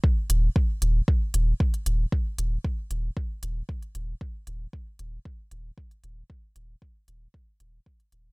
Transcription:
0.04 kick loud
0.30 0.49 D#1 medium
0.30 closed hi-hat medium
0.56 kick loud
0.82 1.01 D#1 medium
0.82 closed hi-hat medium
1.08 kick loud
1.34 1.53 D#1 loud
1.34 closed hi-hat medium
1.60 kick medium
1.74 closed hi-hat soft
1.86 2.05 D#1 medium
1.86 closed hi-hat medium
2.12 kick loud
2.38 2.57 D#1 medium
2.38 closed hi-hat medium
2.64 kick medium
2.91 3.10 D#1 medium
2.91 closed hi-hat medium
3.17 kick loud
3.43 3.62 D#1 medium
3.43 closed hi-hat medium
3.69 kick medium
3.82 closed hi-hat soft
3.95 4.14 D#1 medium
3.95 closed hi-hat medium
4.21 kick loud
4.47 4.66 D#1 medium
4.47 closed hi-hat medium
4.73 kick medium
4.99 5.18 D#1 medium
4.99 closed hi-hat medium
5.25 kick loud
5.51 5.70 D#1 medium
5.51 closed hi-hat medium
5.78 kick medium
5.91 closed hi-hat soft
6.04 6.23 D#1 medium
6.04 closed hi-hat medium
6.30 kick loud
6.56 6.75 D#1 medium
6.56 closed hi-hat medium
6.82 kick medium
7.08 7.27 D#1 medium
7.08 closed hi-hat medium
7.34 kick loud
7.60 7.79 D#1 medium
7.60 closed hi-hat medium
7.86 kick medium
8.00 closed hi-hat soft
8.12 8.31 D#1 medium
8.12 closed hi-hat medium

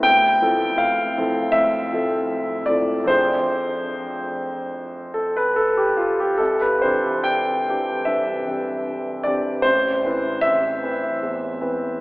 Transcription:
0.03 0.41 D2 medium
0.03 0.78 G5 loud
0.41 1.12 F3 soft
0.41 1.13 C4 soft
0.41 1.13 E4 soft
0.41 1.13 A4 soft
0.78 1.54 F5 medium
1.17 1.51 F3 soft
1.17 1.51 C4 soft
1.17 1.51 E4 soft
1.17 1.52 A4 soft
1.52 1.91 A2 soft
1.52 2.68 E5 medium
1.93 2.65 F3 soft
1.93 2.66 C4 soft
1.93 2.66 E4 soft
1.93 2.66 A4 soft
2.66 3.04 F3 soft
2.66 3.05 C4 soft
2.66 3.06 E4 soft
2.66 3.06 A4 soft
2.66 3.08 D5 medium
3.04 6.33 F2 soft
3.04 6.33 F3 soft
3.04 6.34 C4 soft
3.04 6.34 D4 soft
3.04 6.34 G#4 soft
3.04 5.15 C5 medium
5.14 5.35 A4 medium
5.36 5.57 B4 medium
5.56 5.77 A4 medium
5.77 5.98 G4 medium
5.97 6.18 F4 medium
6.20 6.40 G4 medium
6.38 6.81 C2 soft
6.38 6.60 A4 medium
6.61 6.83 B4 medium
6.82 7.63 E3 soft
6.82 7.64 C4 soft
6.82 7.64 D4 soft
6.82 7.64 G4 soft
6.82 7.25 C5 medium
7.24 8.05 G5 medium
7.68 8.03 E3 soft
7.68 8.03 C4 soft
7.68 8.04 D4 soft
7.68 8.04 G4 soft
8.05 8.45 G2 soft
8.05 9.24 E5 medium
8.46 9.21 E3 soft
8.46 9.21 C4 soft
8.46 9.22 D4 soft
8.46 9.22 G4 soft
9.24 9.61 E3 soft
9.24 9.62 C4 soft
9.24 9.61 D4 soft
9.24 9.62 G4 soft
9.24 9.64 D5 medium
9.62 10.03 A1 soft
9.62 10.43 C5 medium
10.04 10.80 E3 soft
10.04 10.80 C4 soft
10.04 10.80 E4 soft
10.04 10.80 B4 soft
10.41 12.01 E5 medium
10.83 11.18 E3 soft
10.83 11.18 C4 soft
10.83 11.18 E4 soft
10.83 11.19 B4 soft
11.22 11.59 E2 soft
11.61 12.01 E3 soft
11.61 12.01 C4 soft
11.61 12.01 E4 soft
11.61 12.01 B4 soft

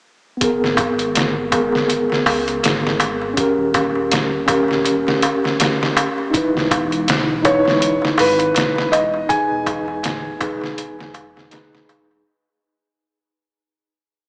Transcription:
0.37 1.46 B3 medium
0.37 1.48 G#4 medium
0.37 darbuka tek soft
0.41 1.50 A#4 medium
0.41 kick loud
0.41 closed hi-hat medium
0.62 2.06 G#1 loud
0.62 snare soft
0.77 kick medium
0.77 closed hi-hat medium
0.77 darbuka tek medium
0.99 closed hi-hat soft
0.99 darbuka tek soft
1.15 snare loud
1.15 closed hi-hat medium
1.15 darbuka tek soft
1.51 1.73 B3 medium
1.51 1.73 G#4 medium
1.51 1.74 A#4 medium
1.51 kick medium
1.51 closed hi-hat medium
1.51 darbuka tek medium
1.72 snare soft
1.72 darbuka tek soft
1.89 closed hi-hat medium
1.89 darbuka tek soft
2.10 snare soft
2.10 darbuka tek soft
2.26 2.59 C#2 medium
2.26 open hi-hat medium
2.26 darbuka tek medium
2.47 closed hi-hat soft
2.47 darbuka tek soft
2.63 3.34 G#1 medium
2.63 snare loud
2.63 closed hi-hat medium
2.63 darbuka tek soft
2.83 snare soft
2.83 darbuka tek soft
3.00 closed hi-hat medium
3.00 darbuka tek medium
3.22 darbuka tek soft
3.33 4.43 C#4 medium
3.33 4.44 G4 medium
3.33 kick loud
3.33 closed hi-hat medium
3.33 darbuka tek medium
3.40 4.46 A#4 medium
3.58 4.82 D#1 loud
3.74 kick medium
3.74 closed hi-hat medium
3.74 darbuka tek medium
3.95 darbuka tek soft
4.11 snare loud
4.11 closed hi-hat medium
4.11 darbuka tek medium
4.11 darbuka dum medium
4.46 4.69 C#4 medium
4.46 4.70 G4 medium
4.46 4.70 A#4 medium
4.46 kick loud
4.46 closed hi-hat medium
4.46 darbuka tek medium
4.68 snare soft
4.68 darbuka tek soft
4.85 5.04 D#1 medium
4.85 closed hi-hat medium
4.85 darbuka tek soft
5.07 snare soft
5.07 darbuka tek soft
5.22 closed hi-hat medium
5.22 darbuka tek medium
5.44 snare soft
5.44 darbuka tek soft
5.60 snare loud
5.60 closed hi-hat medium
5.60 darbuka tek medium
5.82 snare medium
5.82 darbuka tek soft
5.97 closed hi-hat medium
5.97 darbuka tek medium
6.18 darbuka tek soft
6.30 7.39 D#4 medium
6.30 7.41 E4 medium
6.30 kick loud
6.30 darbuka tek soft
6.34 7.43 B4 medium
6.34 closed hi-hat medium
6.55 7.99 E1 loud
6.55 snare soft
6.71 kick medium
6.71 closed hi-hat medium
6.71 darbuka tek medium
6.91 closed hi-hat soft
6.91 darbuka tek soft
7.08 snare loud
7.08 closed hi-hat medium
7.08 darbuka tek soft
7.42 7.65 D#4 medium
7.42 7.66 E4 medium
7.42 7.67 B4 medium
7.42 8.21 C#5 medium
7.42 kick medium
7.42 closed hi-hat medium
7.42 darbuka tek medium
7.65 snare soft
7.65 darbuka tek soft
7.81 closed hi-hat medium
7.81 darbuka tek soft
8.02 snare soft
8.02 darbuka tek soft
8.18 8.52 G#1 medium
8.18 8.96 B4 medium
8.18 open hi-hat medium
8.18 darbuka tek medium
8.39 closed hi-hat soft
8.39 darbuka tek soft
8.55 9.26 E1 medium
8.55 snare loud
8.55 closed hi-hat medium
8.55 darbuka tek medium
8.76 snare soft
8.76 darbuka tek soft
8.92 9.30 D#5 medium
8.92 closed hi-hat medium
8.92 darbuka tek medium
9.14 darbuka tek soft
9.27 10.35 D#4 medium
9.27 10.37 G#4 medium
9.27 11.48 G#5 medium
9.27 kick loud
9.27 closed hi-hat medium
9.27 darbuka tek medium
9.33 10.39 B4 medium
9.50 10.75 E1 loud
9.66 kick medium
9.66 closed hi-hat medium
9.66 darbuka tek medium
9.88 darbuka tek soft
10.03 snare loud
10.03 closed hi-hat medium
10.03 darbuka tek soft
10.03 darbuka dum medium
10.39 10.61 D#4 medium
10.39 10.62 G#4 medium
10.39 10.63 B4 medium
10.39 kick loud
10.39 closed hi-hat medium
10.39 darbuka tek medium
10.61 snare soft
10.61 darbuka tek soft
10.78 12.23 E1 loud
10.78 closed hi-hat medium
10.78 darbuka tek soft
10.99 snare soft
10.99 darbuka tek soft
11.14 closed hi-hat medium
11.14 darbuka tek loud
11.36 snare soft
11.36 darbuka tek soft
11.50 12.21 D#4 medium
11.50 12.22 G#4 medium
11.50 12.23 B4 medium
11.50 snare loud
11.50 closed hi-hat medium
11.50 darbuka tek medium
11.73 snare medium
11.73 darbuka tek soft
11.89 closed hi-hat medium
11.89 darbuka tek medium
12.11 darbuka tek soft

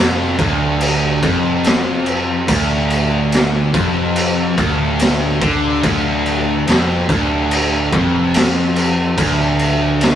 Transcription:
0.00 0.36 F1 loud
0.00 0.38 F2 loud
0.39 1.19 D1 medium
0.39 1.22 D2 loud
0.39 kick loud
0.39 crash medium
0.81 crash medium
1.22 2.45 F1 medium
1.22 2.47 F2 loud
1.22 kick loud
1.22 crash medium
1.64 snare loud
1.64 crash medium
2.06 crash medium
2.47 3.70 D1 loud
2.47 3.73 D2 loud
2.47 kick loud
2.47 crash loud
2.90 crash medium
3.32 snare loud
3.32 crash medium
3.73 4.54 F1 medium
3.73 4.57 F2 loud
3.73 kick loud
3.73 crash medium
4.16 crash medium
4.58 5.38 D1 loud
4.58 5.40 D2 loud
4.58 kick loud
4.58 crash medium
4.99 snare loud
4.99 crash medium
5.41 5.81 D2 loud
5.41 5.82 D3 loud
5.41 kick loud
5.41 crash medium
5.83 6.63 D1 loud
5.83 6.66 D2 loud
5.83 kick loud
5.83 crash medium
6.26 crash medium
6.67 7.06 F1 medium
6.67 7.08 F2 medium
6.67 snare loud
6.67 crash medium
7.09 7.89 D1 medium
7.09 7.91 D2 loud
7.09 kick loud
7.09 crash medium
7.51 crash medium
7.92 9.14 F1 medium
7.92 9.16 F2 loud
7.92 kick loud
7.92 crash medium
8.34 snare loud
8.34 crash medium
8.76 crash medium
9.17 10.15 D1 loud
9.17 10.15 D2 loud
9.17 kick loud
9.17 crash medium
9.59 crash medium
10.01 snare loud
10.01 crash medium

